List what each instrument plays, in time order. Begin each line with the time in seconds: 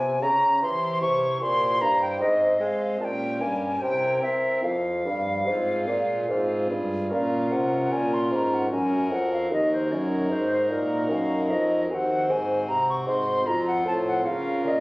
Already playing: pipe organ C3, bassoon C3, flute G#5
0.22 bassoon C#3, pipe organ C#3, flute A#5
0.62 pipe organ E3 E4 G4 C5, bassoon E3, flute C6
1.01 bassoon C3, pipe organ C3, flute C#6
1.41 bassoon A#2, pipe organ A#2 E4 G4 C5, flute C6
1.81 bassoon G2, pipe organ G2, flute A#5
2.02 flute G5
2.20 bassoon G#2, pipe organ G#2 C4 G#4 C5, flute D#5
2.60 bassoon G#3, pipe organ G#3, flute F5 G5
3.00 bassoon A#2, pipe organ A#2 C#4 G4 A#4, flute A5
3.04 flute G5
3.40 bassoon G2, pipe organ G2, flute G#5
3.81 bassoon C3, pipe organ C3 C4 E4 A#4, flute G5
4.22 bassoon C4, pipe organ C4, flute E5
4.63 bassoon F2, pipe organ F2, flute F5
5.05 bassoon G2, pipe organ G2
5.46 bassoon G#2, pipe organ G#2 C4 F4 G#4
5.87 bassoon A#2, pipe organ A#2
6.29 pipe organ G#2 C4 F4 G#4, bassoon G#2
6.70 bassoon G2, pipe organ G2
7.06 pipe organ C#4 F4 A#4
7.11 bassoon A#2, pipe organ A#2, flute F5
7.51 pipe organ C3, bassoon C3, flute F#5
7.91 pipe organ A#2, bassoon A#2, flute G#5
8.13 flute C6
8.30 pipe organ G#2, bassoon G#2, flute C6
8.36 flute A#5
8.54 flute F#5
8.66 pipe organ C#4 F#4 A#4
8.71 pipe organ F#2, bassoon F#2, flute G#5
9.11 pipe organ F2, bassoon F2, flute F#5
9.33 flute F5
9.47 bassoon D#2, pipe organ D#4 F#4 A#4
9.51 pipe organ D#2, flute D#5
9.73 flute C5
9.90 bassoon F#2, pipe organ F#2, flute D#5
9.96 flute C#5
10.30 bassoon G#2, pipe organ G#2, flute C5
10.70 bassoon A#2, pipe organ A#2, flute A#4
11.09 bassoon F#2, pipe organ F#2, flute G5
11.14 flute F5
11.50 bassoon F2, pipe organ F2, flute D#5
11.85 pipe organ C4 F#4 C5
11.90 bassoon D#2, pipe organ D#2, flute G#5
11.94 flute F#5
12.28 pipe organ G#2, bassoon G#2, flute G#5
12.68 bassoon C3, pipe organ C3, flute A#5
12.89 flute C#6
13.06 pipe organ G#2, bassoon G#2, flute C6
13.42 pipe organ C4 F4 C5
13.46 bassoon F2, pipe organ F2, flute A#5
13.67 flute F#5
13.85 bassoon A2, pipe organ A2, flute A5
14.07 flute F#5
14.22 bassoon C#3, pipe organ C#4 F4 A#4, flute F5
14.26 pipe organ C#3
14.64 bassoon A#2, pipe organ A#2, flute D#5 F5